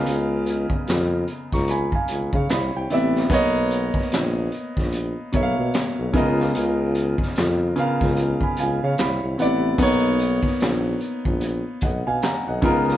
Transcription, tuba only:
X:1
M:4/4
L:1/16
Q:"Swing 16ths" 1/4=74
K:Blyd
V:1 name="Tuba" clef=bass
C,,3 E,, E,,2 z C,,2 z C,, C, =C,, C,, =A,,,2 | B,,,3 A,,, A,,,2 z A,,,2 z B,,, B,, z B,,, C,,2 | C,,3 E,, E,,2 z C,,2 z C,, C, =C,, C,, =A,,,2 | B,,,3 A,,, A,,,2 z A,,,2 z B,,, B,, z B,,, C,,2 |]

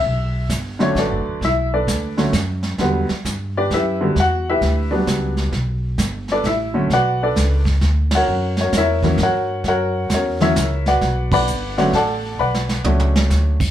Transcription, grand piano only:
X:1
M:3/4
L:1/8
Q:"Swing" 1/4=131
K:Bm
V:1 name="Grand piano"
e2 z [Cc] [DABd]2 | [Ee] [DABd]2 z3 | z3 [DGBd] [EGBe]2 | [Ff] [EGBe]2 z3 |
z3 [DABd] [Ee]2 | [FBdf] [DABd]2 z2 [F^Acf]- | [F^Acf] [CFAc] [EAce]2 [FAcf]2 | [F^Acf]2 [CFAc] [EAce]2 [FBdf]- |
[FBdf] [Bdfb]2 [FBdf] [Adfa]2 | [Bdfb]3 z3 |]
V:2 name="Grand piano" clef=bass
z3 [D,F,A,D]3 | z3 [D,F,A,C] z2 | [D,F,G,B,] z4 [D,F,G,B,] | z3 [F,G,B,D]3 |
z4 z [D,F,A,C] | z6 | z3 [E,F,^A,C] z2 | z3 [E,F,^A,C] z2 |
z3 [D,F,A,C] z2 | z2 [F,A,CD]3 z |]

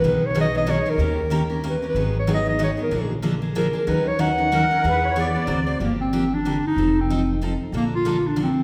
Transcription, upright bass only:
X:1
M:3/4
L:1/8
Q:"Swing" 1/4=187
K:Ebm
V:1 name="Upright bass" clef=bass
=B,,,6 | E,,6 | A,,,6 | B,,,6 |
E,,6 | =E,,4 =D,,2 | [K:Gm] G,,,6 | F,,,6 |
B,,,6 |]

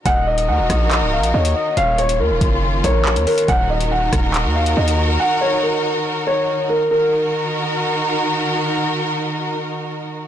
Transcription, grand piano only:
X:1
M:4/4
L:1/8
Q:1/4=140
K:Ebm
V:1 name="Grand piano"
g e g3 f e2 | f d B2 z d2 B | g e g3 f e2 | g d B2 z d2 B |
B6 z2 | z8 |]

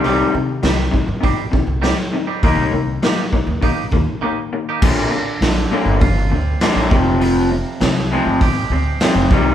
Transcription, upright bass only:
X:1
M:4/4
L:1/16
Q:1/4=100
K:Bbmix
V:1 name="Upright bass" clef=bass
C,,2 C,2 C,,2 z G,,2 z2 C,,2 z3 | E,, C,, C,,2 z3 E,,2 z E,, z4 z | B,,,2 z2 B,,,2 z G,,,3 D,,2 z B,,, F,,,2- | F,,,4 C,,3 A,,,3 D,,2 z F,,, C,,2 |]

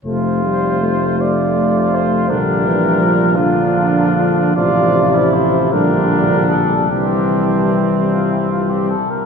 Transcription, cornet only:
X:1
M:6/8
L:1/16
Q:3/8=52
K:F
V:1 name="Cornet"
c6 d4 c2 | B6 F6 | d4 c2 B4 A2 | G4- G z F E F G A B |]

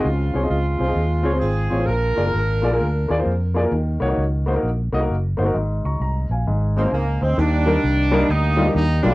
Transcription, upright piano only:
X:1
M:4/4
L:1/16
Q:"Swing" 1/4=131
K:Db
V:1 name="Upright piano"
z2 [CFAd] [CFAe] z2 [CFAc] [CFAe] z2 [CFAd] [CFAc] z2 [CFAd] [CFAc] | z2 [B,FA=d] [B,FAB] z2 [B,FAd] [B,FAB] z2 [B,FAd] [B,FAc] z2 [B,FAd] [B,FAB] | z2 [B,EGd] [B,EGd] z2 [B,EGc] [B,EGB] z2 [B,EGe] [B,EGB] z2 [B,EGc] [B,EGB] | z2 [bd']2 b2 [fa]4 [A,CEc] [A,CEc] [fa]2 [ce]2- |
[K:Eb] [ce]2 [G,B,DEB] z3 [G,B,DEB] z3 [G,B,DEF] [G,B,DEG] z2 [G,B,DEF] G, |]
V:2 name="Upright piano" clef=bass
D,6 z8 z2 | B,,6 z8 z2 | E,6 z8 z2 | A,,6 z2 A,,6 z2 |
[K:Eb] E,6 z8 z2 |]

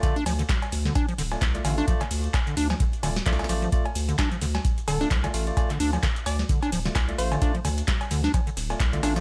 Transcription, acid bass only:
X:1
M:4/4
L:1/16
Q:"Swing 16ths" 1/4=130
K:Dm
V:1 name="Acid bass" clef=bass
D, D F, D, z3 D, D F, D, z3 D, D | F, D, z3 D, D F, D, z D, z F, z F, F, | z3 D, D F, D, z3 D, D F, D, z2 | z D, D F, D, z3 D, D F, D, z3 D, |
D F, D, z3 D, D F, D, z3 D, D F, |]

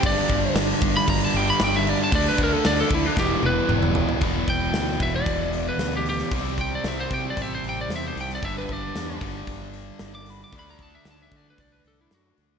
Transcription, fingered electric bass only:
X:1
M:4/4
L:1/8
Q:1/4=114
K:Em
V:1 name="Fingered electric bass" clef=bass
G,,, G,,, G,,, G,,, G,,, G,,, G,,,2 | D,, D,, D,, D,, E,,, E,,, E,,,2 | E,,, E,,, D,, E,,, E,,,2 D,,2 | C,,2 C,, C, A,,, A,,, E,, C,, |
G,,, G,,, E,, G,,, G,,,2 G,,,2 | D,,2 D,, D, C,, C,, F,, D,, |]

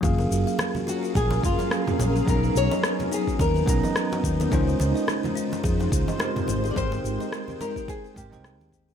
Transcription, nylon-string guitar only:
X:1
M:4/4
L:1/16
Q:"Swing 16ths" 1/4=107
K:F#
V:1 name="Nylon-string guitar"
z6 F2 G2 E4 z2 | A2 c4 G2 A6 z2 | z12 z3 z/2 =d/2 | ^B6 A2 G2 =G4 z2 |]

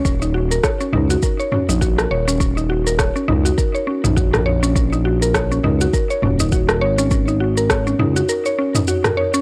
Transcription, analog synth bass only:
X:1
M:4/4
L:1/16
Q:"Swing 16ths" 1/4=102
K:Ebm
V:1 name="Analog synth bass" clef=bass
E,,,4 z2 D,,2 z3 B,,,3 E,,,2- | E,,,4- E,,, z D,,2 z3 B,,,4- B,,,- | B,,,6 D,,2 z2 E,,,4 A,,,2- | A,,,6 D,,2 z8 |]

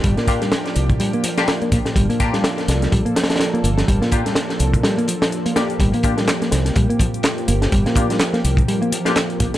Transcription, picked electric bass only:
X:1
M:4/4
L:1/16
Q:"Swing 16ths" 1/4=125
K:Gm
V:1 name="Picked electric bass" clef=bass
G, B,2 G, z4 G, B, F, z2 B, B, z | G, B,2 G, z4 G, B, F, z2 B, B, z | G, B,2 G, z4 G, B, F, z2 B, B, z | G, B,2 G, z B, z2 G, B, F, z3 B, z |
G, B,2 G, z B, z2 G, B, F, z3 B, z |]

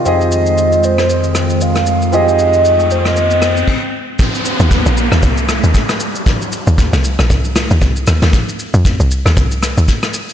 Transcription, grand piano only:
X:1
M:4/4
L:1/8
Q:"Swing 16ths" 1/4=116
K:Eb
V:1 name="Grand piano"
[F,CGAe]8 | [F,CGAe]6 z2 | z8 | z8 |
z8 |]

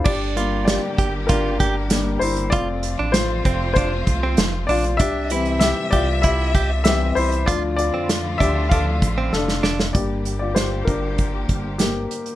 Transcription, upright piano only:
X:1
M:4/4
L:1/16
Q:1/4=97
K:Gdor
V:1 name="Upright piano"
[Gd]4 [Gd]4 [DB]6 [Ec]2 | [Fd]4 [Fc]4 [Fc]6 [Fd]2 | [Ge]4 [Ge]2 [Fd]2 [Ge]4 [Ge]2 [Ec]2 | [Fd]2 [Fd]4 [Ge]2 [Af]4 [DA]4 |
[Gd]3 [Fd] [Gc]2 [DB]6 [B,G]4 |]
V:2 name="Upright piano"
z2 [G,B,D]8- [G,B,D]2 [G,B,D]2 z2 | [F,A,C]2 z12 z2 | z2 [E,G,C]2 z8 [E,G,C]2 z2 | [F,A,D]2 z12 z2 |
[G,B,D]2 z12 z2 |]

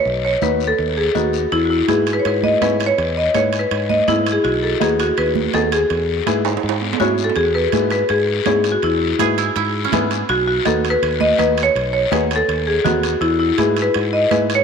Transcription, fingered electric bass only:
X:1
M:4/4
L:1/8
Q:1/4=164
K:E
V:1 name="Fingered electric bass" clef=bass
B,,,2 D,,2 D,,2 D,,2 | E,,2 G,,2 G,,2 G,,2 | E,,2 G,,2 G,,2 G,,2 | B,,,2 D,,2 D,,2 D,,2 |
E,,2 G,,2 G,,2 G,,2 | E,,2 G,,2 G,,2 G,,2 | E,,2 G,,2 G,,2 G,,2 | B,,,2 D,,2 D,,2 D,,2 |
B,,,2 D,,2 D,,2 D,,2 | E,,2 G,,2 G,,2 G,,2 |]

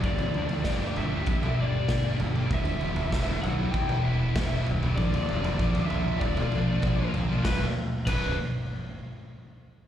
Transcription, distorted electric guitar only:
X:1
M:4/4
L:1/16
Q:1/4=97
K:Bm
V:1 name="Distorted electric guitar"
[G,,D,G,_B,DG]2 [G,B,DG]2 [G,,D,G,B,DG] [G,B,DG] [G,B,DG] [G,B,DG]2 [G,B,DG] [G,B,DG]2 [G,,D,G,B,DG] [G,B,DG]2 [G,B,DG] | [E,,B,,E,G,B,E]2 [E,G,B,E]2 [E,,B,,E,G,B,E] [E,G,B,E] [E,G,B,E] [E,G,B,E]2 [E,G,B,E] [E,G,B,E]2 [E,,B,,E,G,B,E] [E,G,B,E]2 [E,G,B,E] | [^A,,^E,^A,D^E]2 [E,A,DE]2 [A,,E,A,DE] [A,DE] [E,A,DE] [A,DE]2 [A,DE] [E,A,DE]2 [A,,E,A,DE] [A,DE]2 [A,DE] | [B,,,F,,B,,F,D] z3 [B,,,F,,B,,F,D]2 z8 z2 |]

